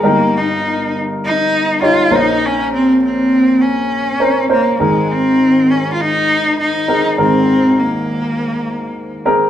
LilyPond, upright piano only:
<<
  \new Staff \with { instrumentName = "Upright piano" } { \time 4/4 \key aes \major \tempo 4 = 101 <ees' g' bes'>4. r4. <ees' g' des''>8 <des' bes' c''>8~ | <des' bes' c''>4 r2 <des' bes' c''>8 <des' bes' c''>8 | <c' aes' bes'>4. r2 <c' aes' bes'>8 | <c' aes' bes'>4. r2 <c' aes' bes'>8 | }
  \new Staff \with { instrumentName = "Upright piano" } { \clef bass \time 4/4 \key aes \major <g,, g,>2.~ <g,, g,>8 <bes,, bes,>8~ | <bes,, bes,>2.~ <bes,, bes,>8 r8 | <aes,, aes,>1 | <aes,, aes,>1 | }
>>